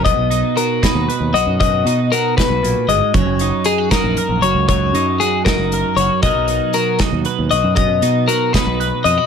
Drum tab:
HH |xxxxxx|xxxxxx|xxxxxx|xxxxxx|
SD |---o--|---o--|---o--|---o--|
BD |o--o--|o--o--|o--o--|o--o--|

HH |xxxxxx|xxxxxx|
SD |---o--|---o--|
BD |o--o--|o--o--|